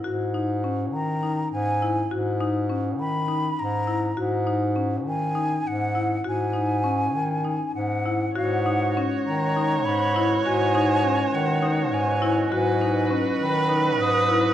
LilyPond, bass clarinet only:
\new Staff \with { instrumentName = "Bass clarinet" } { \clef bass \time 7/8 \key gis \minor \tempo 4 = 102 gis,4. dis4 gis,4 | gis,4. dis4 gis,4 | gis,4. dis4 gis,4 | gis,4. dis4 gis,4 |
gis,4. dis4 gis,4 | gis,4. dis4 gis,4 | gis,4. dis4 gis,4 | }